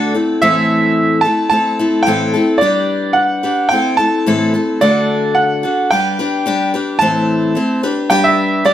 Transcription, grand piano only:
0.00 0.11 D5 medium
0.42 1.21 E5 medium
1.21 1.48 A5 medium
1.50 2.08 A5 medium
2.03 2.43 G5 medium
2.58 3.17 D5 medium
3.13 3.72 F#5 medium
3.69 3.96 G5 medium
3.97 4.49 A5 loud
4.81 5.32 D5 medium
5.35 5.92 F#5 medium
5.91 6.69 G5 medium
6.99 7.78 A5 loud
8.10 8.24 G5 medium
8.24 8.62 E5 medium
8.65 8.74 D5 medium

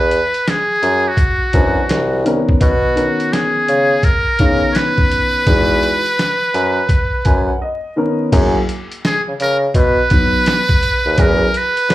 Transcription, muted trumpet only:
0.00 0.51 B4 loud
0.49 1.10 G#4 medium
1.08 2.27 F#4 medium
2.62 3.34 F#4 medium
3.33 4.06 G#4 medium
4.05 4.74 A#4 loud
4.72 7.61 B4 loud
4.72 4.77 C#5 medium
9.06 9.22 G#4 medium
9.42 9.58 A#4 loud
9.77 11.22 B4 loud
11.21 11.59 A#4 loud
11.57 11.95 B4 loud

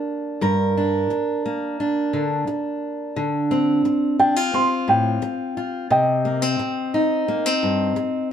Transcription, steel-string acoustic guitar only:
0.00 1.44 A#3 soft
0.00 0.76 D4 soft
0.00 0.41 A#4 soft
0.41 1.09 G2 medium
0.41 3.12 A#4 medium
0.77 1.79 D4 soft
1.10 muted steel-string acoustic guitar stroke soft
1.46 3.17 A#3 soft
1.80 4.18 D4 soft
2.13 2.47 D3 medium
2.47 muted steel-string acoustic guitar stroke medium
3.16 3.84 D3 medium
3.51 4.53 C4 medium
3.85 muted steel-string acoustic guitar stroke medium
4.19 4.36 D4 medium
4.36 5.56 F4 soft
4.54 5.86 C4 soft
4.88 5.21 A2 medium
5.22 muted steel-string acoustic guitar stroke medium
5.57 5.87 F4 soft
5.90 6.58 C3 medium
6.25 6.42 A#3 medium
6.42 7.28 C4 soft
6.59 muted steel-string acoustic guitar stroke medium
6.94 8.30 D#4 medium
7.28 7.46 A#3 medium
7.46 8.32 C4 soft
7.63 7.95 G2 medium
7.96 muted steel-string acoustic guitar stroke medium

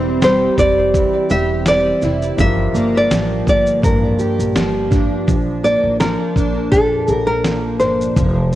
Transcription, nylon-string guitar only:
0.24 0.59 C5 medium
0.59 1.31 D5 loud
1.31 1.64 E5 medium
1.68 2.40 D5 loud
2.40 2.92 E5 loud
2.97 3.48 D5 loud
3.49 3.82 D5 medium
3.84 4.88 A#4 medium
5.64 5.98 D5 medium
6.00 6.71 A#4 medium
6.72 7.13 A4 medium
7.13 7.24 G4 medium
7.27 7.79 A#4 medium
7.80 8.55 C5 medium

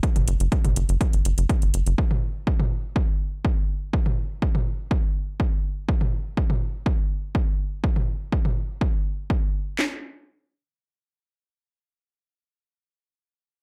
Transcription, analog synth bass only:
0.16 0.24 F#1 medium
0.27 0.37 F#1 loud
0.40 0.49 F#1 medium
0.64 0.73 F#1 medium
0.76 0.85 F#1 loud
0.89 0.97 F#1 medium
1.13 1.22 F#1 medium
1.25 1.34 F#1 medium
1.38 1.46 F#1 medium
1.62 1.71 F#1 medium
1.74 1.83 F#1 medium
1.87 1.95 F#1 medium

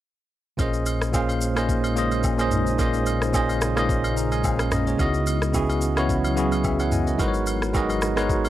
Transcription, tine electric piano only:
0.57 1.03 A#2 medium
0.57 1.04 A#3 medium
0.57 1.04 C#4 medium
0.57 1.04 G#4 medium
0.57 1.05 C5 medium
0.57 1.05 D#5 medium
1.12 1.47 A#2 medium
1.12 1.47 A#3 medium
1.12 1.47 C#4 medium
1.12 1.48 G#4 medium
1.12 1.48 C5 medium
1.12 1.49 F5 medium
1.55 1.88 A#2 medium
1.55 1.89 A#3 medium
1.55 1.89 C#4 medium
1.55 1.89 G#4 medium
1.55 1.90 C5 medium
1.55 1.90 D#5 medium
1.95 2.29 A#2 medium
1.95 2.30 A#3 medium
1.95 2.30 C#4 medium
1.95 2.30 G#4 medium
1.95 2.31 C5 medium
1.95 2.31 D#5 medium
2.37 2.71 A#2 medium
2.37 2.71 A#3 medium
2.37 2.71 C#4 medium
2.37 2.72 G#4 medium
2.37 2.72 C5 medium
2.37 2.73 D#5 medium
2.77 3.23 A#2 medium
2.77 3.24 A#3 medium
2.77 3.24 C#4 medium
2.77 3.25 G#4 medium
2.77 3.25 C5 medium
2.77 3.25 D#5 medium
3.32 3.67 A#2 medium
3.32 3.67 A#3 medium
3.32 3.68 C#4 medium
3.32 3.68 G#4 medium
3.32 3.68 C5 medium
3.32 3.69 D#5 medium
3.75 4.08 A#2 medium
3.75 4.09 A#3 medium
3.75 4.09 C#4 medium
3.75 4.10 G#4 medium
3.75 4.10 C5 medium
3.75 4.10 D#5 loud
4.17 4.31 F5 medium
4.17 4.31 A#5 medium
4.32 4.44 D#5 medium
4.32 4.44 G#5 medium
4.44 4.71 C5 medium
4.44 4.70 F5 medium
4.72 4.87 A#4 medium
4.72 4.86 D#5 medium
4.87 5.14 G#4 medium
4.87 5.13 C#5 medium
4.98 5.44 C#3 medium
4.98 5.44 B3 medium
4.98 5.45 E4 medium
4.98 5.45 F#4 medium
4.98 5.45 D#5 medium
5.53 5.87 C#3 medium
5.53 5.88 B3 medium
5.53 5.88 E4 medium
5.53 5.88 F#4 medium
5.53 5.89 G#4 loud
5.95 6.29 C#3 medium
5.95 6.29 B3 medium
5.95 6.30 E4 medium
5.95 6.30 F#4 medium
5.95 6.30 C#5 loud
6.35 6.70 C#3 medium
6.35 6.70 B3 medium
6.35 6.71 E4 medium
6.35 6.71 F#4 medium
6.35 6.71 G#4 medium
6.65 6.79 B4 medium
6.65 6.79 E5 medium
6.80 6.92 C#5 medium
6.80 6.92 F#5 medium
6.92 7.06 D#5 medium
6.92 7.06 G#5 medium
7.07 7.19 A#4 medium
7.07 7.33 D#5 medium
7.18 7.64 G#3 medium
7.18 7.64 D#4 medium
7.18 7.64 F#4 medium
7.18 7.65 A#4 medium
7.18 7.65 B4 medium
7.18 7.28 C5 medium
7.28 7.69 C#5 medium
7.73 8.07 G#3 medium
7.73 8.08 D#4 medium
7.73 8.08 F#4 medium
7.73 8.08 A#4 medium
7.73 8.09 B4 medium
7.73 8.09 D#5 loud
8.16 8.49 G#3 medium
8.16 8.49 D#4 medium
8.16 8.49 F#4 medium
8.16 8.49 A#4 medium
8.16 8.49 B4 medium
8.16 8.49 C#5 medium

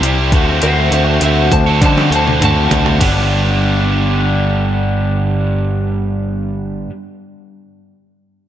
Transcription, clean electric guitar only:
0.63 0.92 C5 medium
0.63 0.91 E5 medium
0.93 1.20 C5 medium
0.93 1.21 E5 medium
1.23 1.50 C5 medium
1.23 1.52 E5 medium
1.52 1.79 C5 medium
1.52 1.81 A5 medium
1.84 2.10 C5 medium
1.84 2.12 A5 medium
2.15 2.41 C5 medium
2.15 2.42 A5 medium
2.45 3.01 A5 medium

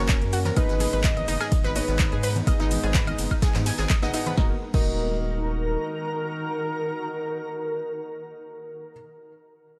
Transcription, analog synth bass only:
0.00 0.23 F#1 medium
0.22 0.51 F#2 loud
0.57 0.87 G#1 loud
0.93 1.23 G#1 loud
1.28 1.37 F#1 medium
1.64 1.81 G#1 medium
1.88 2.14 G#1 medium
2.12 2.42 G#2 loud
2.47 2.78 G#1 loud
2.84 3.13 G#1 loud
3.19 3.27 F#1 medium
3.55 3.71 G#2 loud
3.79 3.87 G#1 loud
4.02 4.10 G#1 loud
4.38 4.51 D#1 loud
4.74 5.76 D#1 loud

